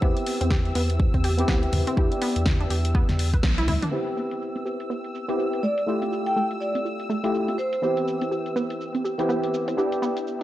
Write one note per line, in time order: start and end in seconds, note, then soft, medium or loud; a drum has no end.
0.00 0.13 E2 loud
0.00 1.35 B3 medium
0.00 0.14 B3 loud
0.00 1.35 C4 medium
0.00 1.35 E4 medium
0.00 1.36 G4 medium
0.00 3.91 E6 medium
0.00 kick loud
0.17 closed hi-hat medium
0.27 open hi-hat loud
0.41 0.71 E2 medium
0.41 0.49 C4 medium
0.41 closed hi-hat medium
0.51 0.63 G4 medium
0.51 kick loud
0.51 snare loud
0.51 high conga medium
0.65 closed hi-hat soft
0.75 1.08 E2 medium
0.75 0.87 B3 loud
0.75 open hi-hat loud
0.90 closed hi-hat medium
1.00 kick loud
1.14 1.44 E2 loud
1.14 1.22 C4 medium
1.14 kick medium
1.14 closed hi-hat soft
1.14 high conga medium
1.24 1.36 G4 medium
1.24 open hi-hat loud
1.37 1.94 B3 medium
1.37 1.95 C4 medium
1.37 1.95 E4 medium
1.37 1.95 G4 medium
1.37 closed hi-hat medium
1.48 1.68 D2 medium
1.48 1.60 B3 loud
1.48 kick loud
1.48 snare loud
1.63 closed hi-hat medium
1.73 1.83 E2 medium
1.73 open hi-hat loud
1.73 high conga medium
1.73 low conga medium
1.87 1.95 C4 medium
1.87 closed hi-hat medium
1.96 2.08 E2 loud
1.96 3.30 B3 medium
1.96 3.30 D4 medium
1.96 3.30 E4 medium
1.96 2.09 G4 medium
1.96 3.31 G4 medium
1.96 kick loud
2.12 closed hi-hat medium
2.22 2.34 B3 loud
2.22 open hi-hat loud
2.36 2.66 E2 medium
2.36 closed hi-hat medium
2.46 kick loud
2.46 snare loud
2.46 high conga medium
2.60 2.69 D4 medium
2.60 closed hi-hat soft
2.70 3.03 E2 medium
2.70 2.82 G4 medium
2.70 open hi-hat loud
2.85 closed hi-hat medium
2.95 3.07 B3 loud
2.95 kick loud
3.09 3.39 E2 loud
3.09 snare soft
3.09 closed hi-hat soft
3.09 high conga medium
3.19 open hi-hat loud
3.34 3.39 B4 medium
3.34 kick medium
3.34 closed hi-hat medium
3.43 3.69 B1 loud
3.43 3.52 B3 medium
3.43 kick loud
3.43 snare loud
3.58 3.66 E4 loud
3.58 closed hi-hat medium
3.68 3.79 D2 medium
3.68 3.80 E4 loud
3.68 open hi-hat loud
3.68 high tom medium
3.68 high conga medium
3.68 low conga medium
3.82 3.91 D4 medium
3.82 closed hi-hat medium
3.82 mid tom medium
3.91 5.25 B3 medium
3.91 5.25 C4 medium
3.91 5.25 E4 medium
3.91 4.04 G4 medium
3.91 5.26 G4 medium
3.91 10.43 E6 medium
3.91 shaker soft
4.07 closed hi-hat medium
4.07 shaker soft
4.17 4.29 B3 medium
4.17 shaker medium
4.31 closed hi-hat medium
4.31 shaker soft
4.42 shaker soft
4.56 4.64 C4 medium
4.56 closed hi-hat soft
4.56 shaker soft
4.66 4.77 G4 medium
4.66 shaker medium
4.80 closed hi-hat medium
4.80 shaker soft
4.90 5.02 B3 medium
4.90 shaker soft
5.04 closed hi-hat soft
5.04 shaker soft
5.15 shaker medium
5.28 5.62 B3 medium
5.28 5.62 C4 medium
5.28 5.37 C4 medium
5.28 5.62 E4 medium
5.28 5.62 G4 medium
5.28 closed hi-hat medium
5.28 shaker soft
5.39 5.51 G4 medium
5.39 shaker soft
5.53 closed hi-hat soft
5.53 shaker soft
5.63 5.75 A3 medium
5.63 5.79 D5 medium
5.63 shaker medium
5.78 closed hi-hat medium
5.78 shaker soft
5.86 7.20 A3 medium
5.86 7.20 E4 medium
5.86 7.21 F4 medium
5.86 7.21 G4 medium
5.86 shaker soft
6.02 6.10 C4 medium
6.02 closed hi-hat soft
6.02 shaker soft
6.12 6.24 F4 medium
6.12 shaker medium
6.26 6.39 G5 medium
6.26 closed hi-hat medium
6.26 shaker soft
6.36 6.48 A3 loud
6.36 shaker soft
6.51 closed hi-hat soft
6.51 shaker soft
6.61 6.77 D5 medium
6.61 shaker medium
6.75 6.83 C4 medium
6.75 closed hi-hat medium
6.75 shaker soft
6.85 6.97 F4 medium
6.85 shaker soft
7.00 closed hi-hat soft
7.00 shaker soft
7.09 7.21 A3 loud
7.09 shaker medium
7.23 7.57 A3 medium
7.23 7.57 E4 medium
7.23 7.57 F4 medium
7.23 7.57 G4 medium
7.23 closed hi-hat medium
7.23 shaker soft
7.35 shaker soft
7.48 7.56 C4 medium
7.48 closed hi-hat soft
7.48 shaker soft
7.58 7.70 G4 medium
7.58 7.97 C5 medium
7.58 shaker medium
7.73 closed hi-hat medium
7.73 shaker soft
7.82 9.15 E3 medium
7.82 9.15 B3 medium
7.82 7.95 B3 medium
7.82 9.16 C4 medium
7.82 9.16 E4 medium
7.82 9.16 G4 medium
7.82 shaker soft
7.97 closed hi-hat soft
7.97 shaker soft
8.08 shaker medium
8.21 8.30 C4 medium
8.21 closed hi-hat medium
8.21 shaker soft
8.31 8.43 G4 medium
8.31 shaker soft
8.46 closed hi-hat soft
8.46 shaker soft
8.56 8.68 B3 loud
8.56 shaker medium
8.70 closed hi-hat medium
8.70 shaker soft
8.81 shaker soft
8.95 9.03 C4 medium
8.95 closed hi-hat soft
8.95 shaker soft
9.05 9.16 G4 medium
9.05 shaker medium
9.18 9.75 E3 medium
9.18 9.75 B3 medium
9.18 9.75 C4 medium
9.18 9.76 E4 medium
9.18 9.76 G4 medium
9.18 closed hi-hat medium
9.18 shaker soft
9.29 9.41 B3 loud
9.29 shaker soft
9.43 closed hi-hat soft
9.43 shaker soft
9.54 shaker medium
9.68 9.76 C4 medium
9.68 closed hi-hat medium
9.68 shaker soft
9.77 10.43 B3 medium
9.77 10.43 D4 medium
9.77 10.43 E4 medium
9.77 9.90 G4 medium
9.77 10.43 G4 medium
9.77 shaker soft
9.92 closed hi-hat soft
9.92 shaker soft
10.02 10.14 B3 loud
10.02 shaker medium
10.17 closed hi-hat medium
10.17 shaker soft
10.27 shaker soft